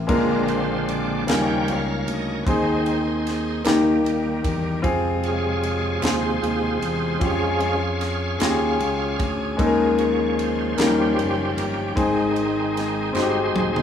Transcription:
0.07 fingered electric bass A#1, grand piano A#2 G#3 A#3 D4 F4 A#4, tonewheel organ D3 G#3 A#4, kick, ride
0.11 tonewheel organ C4 D4 F4
0.48 tonewheel organ C5, ride
0.89 tonewheel organ D5, ride
1.27 fingered electric bass D#2, grand piano C#3 G3 A#3 C#4 D#4 A#4, tonewheel organ F3 G3 A#4 G5, snare, clap, ride
1.31 tonewheel organ C#4 C#5
1.66 fingered electric bass C#2, tonewheel organ F5, ride
2.07 fingered electric bass D2, ride
2.11 tonewheel organ D#5
2.43 fingered electric bass D#2, grand piano C4, tonewheel organ B4, kick
2.47 grand piano D#3 D#4 G#4, tonewheel organ D#3 G#3 C4 D#4 G#4 C5, ride
2.86 ride
3.27 snare, ride
3.64 fingered electric bass D#2, grand piano D#3 A#3 D#4 G4, tonewheel organ D#3 G3 A#3, snare, clap, ride
4.04 fingered electric bass D#2, ride
4.44 fingered electric bass E2, kick, ride
4.82 fingered electric bass F2, tonewheel organ C3 G#3, grand piano C4 F4 G#4, kick, ride
5.23 tonewheel organ F4 G#4 C#5, ride
5.63 ride
6.01 fingered electric bass D#2, grand piano C4 F4 G#4, tonewheel organ G#4 C5, snare, clap, ride
6.06 tonewheel organ F4
6.42 fingered electric bass D#2, ride
6.82 fingered electric bass E2, ride
7.19 fingered electric bass F2, grand piano C#4 F4 G4, kick, ride
7.25 tonewheel organ F3 G#3 C#4 G#4 C#5 F5, grand piano G#4
7.60 ride
8.01 snare, ride
8.39 fingered electric bass D#2, grand piano C#4 F4 G4, snare, clap, ride
8.48 grand piano G#4
8.79 fingered electric bass C#2, ride
9.18 fingered electric bass D2, tonewheel organ C#4 G#4, kick, ride
9.57 fingered electric bass D#2, grand piano D#3 G#3 A#3 C#4 D#4 A4, tonewheel organ F3, kick, ride
9.61 tonewheel organ G#3 C#4
9.66 grand piano A#4
9.98 tonewheel organ C#5, ride
10.39 tonewheel organ C5, ride
10.77 fingered electric bass D#2, grand piano D#3 F#3 A#3 C#4 D#4 A#4, tonewheel organ F3 G3 C#4 G4 C5, snare, clap, ride
10.84 grand piano G3
11.17 fingered electric bass F#1, ride
11.49 tonewheel organ A4
11.57 fingered electric bass G1, tonewheel organ A#4, ride
11.95 fingered electric bass G#1, grand piano G#2 C4 D#4 G#4, tonewheel organ D#3 G#3 C4 D#4 G#4, kick, ride
12.36 ride
12.77 snare, ride
13.13 fingered electric bass G1, tonewheel organ G#3 D#4 C5, grand piano C4 D#4 F#4, clap
13.17 snare
13.22 grand piano G4
13.55 fingered electric bass D#1, high tom
13.76 mid tom

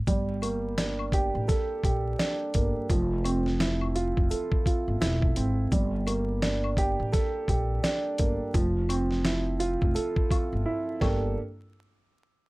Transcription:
0.07 upright bass G1, grand piano G3, kick, closed hi-hat, shaker
0.42 grand piano A#3, closed hi-hat, high woodblock, shaker
0.78 grand piano D4, snare, closed hi-hat, shaker
0.99 high woodblock
1.12 grand piano G4, kick, closed hi-hat, shaker
1.35 upright bass A1
1.48 grand piano A4, kick, snare, closed hi-hat, shaker
1.84 upright bass A#1, grand piano G4, kick, closed hi-hat, shaker
2.19 grand piano D4, snare, closed hi-hat, shaker
2.54 upright bass G1, grand piano A#3, kick, closed hi-hat, shaker
2.89 upright bass F1, grand piano F3, kick, closed hi-hat, shaker
3.24 grand piano C4, closed hi-hat, high woodblock, shaker
3.46 snare
3.60 grand piano E4, snare, closed hi-hat, shaker
3.81 high woodblock
3.95 grand piano F4, closed hi-hat, shaker
4.17 upright bass F1, kick
4.30 grand piano A4, closed hi-hat, shaker
4.52 kick
4.66 grand piano F4, kick, closed hi-hat, shaker
4.88 upright bass G1
5.01 upright bass E1, grand piano E4, snare, closed hi-hat, shaker
5.22 kick
5.36 upright bass G#1, grand piano C4, closed hi-hat, shaker
5.71 upright bass G1, grand piano G3, kick, closed hi-hat, shaker
6.07 grand piano A#3, closed hi-hat, high woodblock, shaker
6.42 grand piano D4, snare, closed hi-hat, shaker
6.64 high woodblock
6.77 grand piano G4, kick, closed hi-hat, shaker
7.00 upright bass A1
7.12 grand piano A4, kick, snare, closed hi-hat, shaker
7.48 upright bass A#1, grand piano G4, kick, closed hi-hat, shaker
7.84 grand piano D4, snare, closed hi-hat, shaker
8.18 upright bass G1, grand piano A#3, kick, closed hi-hat, shaker
8.54 upright bass F1, grand piano F3, kick, closed hi-hat, shaker
8.89 grand piano C4, closed hi-hat, high woodblock, shaker
9.11 snare
9.25 grand piano E4, snare, closed hi-hat, shaker
9.60 grand piano F4, closed hi-hat, shaker
9.82 upright bass F1, kick
9.95 grand piano A4, closed hi-hat, shaker
10.16 kick
10.31 grand piano F4, kick, closed hi-hat, high woodblock, shaker
10.53 upright bass G1
10.66 grand piano E4
11.01 upright bass G1, grand piano A#3 D4 G4 A4, kick, snare, high woodblock

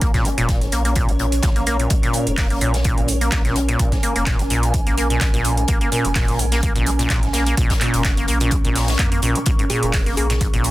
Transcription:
Already playing: ambient pad C#4 A#4 C#5
0.01 sub bass A#1, acid bass A#3, kick, closed hi-hat
0.14 acid bass A#2, kick, snare, closed hi-hat
0.25 acid bass A#3, closed hi-hat
0.38 sub bass F1, acid bass A#2, closed hi-hat
0.49 kick, snare, closed hi-hat
0.61 acid bass G#2, closed hi-hat
0.72 sub bass A#1, acid bass A#3, closed hi-hat
0.85 acid bass A#3, closed hi-hat
0.96 acid bass A#2, kick, closed hi-hat
1.09 sub bass A#1, acid bass A#3, closed hi-hat
1.19 acid bass A#2, closed hi-hat
1.32 closed hi-hat
1.43 sub bass A#1, acid bass A#2, kick, snare, closed hi-hat
1.56 acid bass A#3, closed hi-hat
1.66 sub bass A#1, acid bass A#3, closed hi-hat
1.79 acid bass A#2, closed hi-hat
1.90 sub bass A#1, acid bass A#3, kick, closed hi-hat
2.03 acid bass A#2, closed hi-hat
2.13 closed hi-hat, open hi-hat
2.27 sub bass F1, acid bass G#2, closed hi-hat
2.37 acid bass A#3, kick, snare, clap, closed hi-hat, open hi-hat
2.50 acid bass A#3, closed hi-hat
2.61 sub bass A#1, acid bass A#2, closed hi-hat, open hi-hat
2.74 acid bass A#3, snare, closed hi-hat
2.84 acid bass A#2, kick, closed hi-hat
2.92 ambient pad G#5
2.98 sub bass A#1, closed hi-hat
3.08 acid bass G#2, closed hi-hat, open hi-hat
3.21 acid bass A#3, closed hi-hat
3.32 sub bass A#1, acid bass A#3, kick, snare, clap, closed hi-hat
3.45 acid bass A#2, snare, closed hi-hat
3.56 sub bass A#1, acid bass A#3, closed hi-hat, open hi-hat
3.68 acid bass A#2, closed hi-hat
3.79 sub bass A#1, kick, closed hi-hat
3.91 acid bass G#2, kick, snare, closed hi-hat
4.03 acid bass A#3, closed hi-hat, open hi-hat
4.16 sub bass F1, acid bass A#3, closed hi-hat
4.26 acid bass A#2, kick, snare, clap, closed hi-hat
4.39 acid bass A#3, closed hi-hat
4.50 sub bass A#1, acid bass A#2, closed hi-hat, open hi-hat
4.63 closed hi-hat
4.74 acid bass G#2, kick, closed hi-hat
4.87 sub bass A#1, acid bass A#3, closed hi-hat
4.98 acid bass A#3, closed hi-hat, open hi-hat
5.10 acid bass A#2, closed hi-hat
5.21 sub bass A#1, acid bass A#3, kick, snare, clap, closed hi-hat
5.34 acid bass A#2, closed hi-hat
5.44 sub bass A#1, closed hi-hat, open hi-hat
5.57 acid bass G#2, closed hi-hat
5.68 sub bass A#1, acid bass A#3, kick, closed hi-hat
5.81 acid bass A#3, closed hi-hat
5.92 acid bass A#2, closed hi-hat, open hi-hat
6.05 sub bass F1, acid bass A#3, closed hi-hat
6.15 acid bass A#2, kick, snare, clap, closed hi-hat, open hi-hat
6.28 closed hi-hat
6.39 sub bass A#1, acid bass G#2, closed hi-hat, open hi-hat
6.52 acid bass A#3, snare, closed hi-hat
6.63 acid bass A#3, kick, closed hi-hat
6.70 ambient pad C#6
6.76 sub bass A#1, acid bass A#2, closed hi-hat
6.86 acid bass A#3, closed hi-hat, open hi-hat
6.99 acid bass A#2, closed hi-hat
7.10 sub bass A#1, kick, snare, clap, closed hi-hat
7.23 acid bass G#2, snare, closed hi-hat
7.33 sub bass A#1, acid bass A#3, snare, closed hi-hat, open hi-hat
7.46 acid bass A#3, closed hi-hat
7.57 sub bass A#1, acid bass A#2, kick, closed hi-hat
7.70 acid bass A#3, kick, snare, closed hi-hat
7.81 acid bass A#2, clap, closed hi-hat, open hi-hat
7.94 sub bass F1, closed hi-hat
8.04 acid bass G#2, kick, snare, clap, closed hi-hat
8.17 acid bass A#3, closed hi-hat
8.28 sub bass A#1, acid bass A#3, closed hi-hat, open hi-hat
8.40 acid bass A#2, closed hi-hat
8.51 acid bass A#3, kick, closed hi-hat
8.65 sub bass A#1, acid bass A#2, closed hi-hat
8.76 snare, open hi-hat
8.88 acid bass G#2, snare, closed hi-hat, open hi-hat
8.99 sub bass F2, acid bass A#3, kick, clap, closed hi-hat
9.12 acid bass A#3, closed hi-hat
9.22 sub bass A#1, acid bass A#2, closed hi-hat, open hi-hat
9.35 acid bass A#3, closed hi-hat
9.46 sub bass A#1, acid bass A#2, kick, closed hi-hat
9.59 acid bass G#2, closed hi-hat
9.70 acid bass A#2, synth pluck G#4, closed hi-hat, open hi-hat
9.83 sub bass F1, closed hi-hat
9.93 acid bass G#2, kick, snare, clap, closed hi-hat, open hi-hat
10.06 acid bass A#3, closed hi-hat
10.17 sub bass A#1, acid bass A#3, synth pluck G#4, closed hi-hat, open hi-hat
10.30 acid bass A#2, snare, closed hi-hat
10.41 acid bass G#2, kick, closed hi-hat
10.48 ambient pad G#5
10.54 sub bass A#1, acid bass A#2, closed hi-hat
10.64 closed hi-hat, open hi-hat

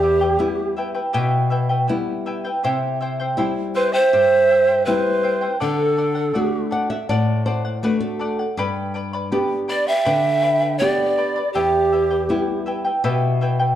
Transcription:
Already playing: nylon-string guitar E2, quena G4, pan flute G4
0.02 charango E4 B4 E5 G5
0.21 charango E4 B4 G5
0.39 nylon-string guitar G3 B3 E4, charango E4 B4 E5 G5
0.77 charango E4 B4 E5 G5
0.95 charango E4 B4 G5
1.13 nylon-string guitar B2, charango E4 G4 B4 E5 G5
1.50 charango E4 B4 E5 G5
1.69 charango E4 B4 G5
1.87 nylon-string guitar G3 B3 E4, charango E4 B4 E5 G5
2.26 charango E4 B4 E5 G5
2.45 charango E4 B4 G5
2.63 nylon-string guitar C3, charango E4 G4 C5 E5 G5
3.01 charango E4 C5 E5 G5
3.20 charango E4 C5 G5
3.37 nylon-string guitar G3 C4 E4, charango E4 C5 E5 G5
3.74 charango E4 C5 E5 G5, pan flute B4, quena C5
3.92 charango E4 C5 G5, pan flute C5, quena E5
4.13 nylon-string guitar G2, charango E4 G4 C5 E5 G5
4.49 charango E4 C5 E5 G5
4.68 charango E4 C5 G5
4.85 nylon-string guitar G3 C4 E4, charango E4 E5 G5, pan flute B4, quena C5
5.23 charango E4 C5 E5 G5
5.41 charango E4 C5 G5
5.60 nylon-string guitar D3, charango A4 D5 F#5, pan flute A4, quena A4
5.97 charango A4 D5 F#5
6.15 charango D5 F#5
6.33 nylon-string guitar A3 D4 F#4, charango A4 D5 F#5
6.71 charango A4 D5 F#5, nylon-string guitar F#5
6.90 charango D5 F#5, nylon-string guitar E5
7.09 nylon-string guitar A2 D5, charango A4 D5 F#5
7.46 charango A4 D5 F#5, nylon-string guitar C5
7.65 charango D5 F#5
7.83 nylon-string guitar A3 D4 F#4 B4, charango A4 D5 F#5
8.00 nylon-string guitar A4
8.19 charango A4 D5 F#5
8.39 charango D5 F#5
8.57 nylon-string guitar G2, charango G4 B4 D5 G5 B5
8.94 charango B4 D5 G5 B5
9.13 charango B4 D5 B5
9.32 nylon-string guitar B3 D4 G4, charango B4 D5 G5 B5
9.68 charango B4 D5 G5 B5, pan flute D5, quena D5
9.87 charango B4 D5 B5, pan flute E5, quena G5
10.05 nylon-string guitar D3, charango G4 B4 D5 G5 B5
10.42 charango B4 D5 G5 B5
10.61 charango B4 D5 B5
10.78 nylon-string guitar B3 D4 G4, charango B4 D5 G5 B5, pan flute D5, quena D5
11.18 charango B4 D5 G5 B5
11.36 charango B4 D5 B5
11.53 nylon-string guitar E2, charango E4 G4 B4 E5 G5, pan flute G4, quena G4
11.92 charango E4 B4 E5 G5
12.11 charango E4 B4 G5
12.29 nylon-string guitar G3 B3 E4, charango E4 B4 E5 G5
12.66 charango E4 B4 E5 G5
12.85 charango E4 B4 G5
13.04 nylon-string guitar B2, charango E4 G4 B4 E5 G5
13.41 charango E4 B4 E5 G5
13.59 charango E4 B4 G5

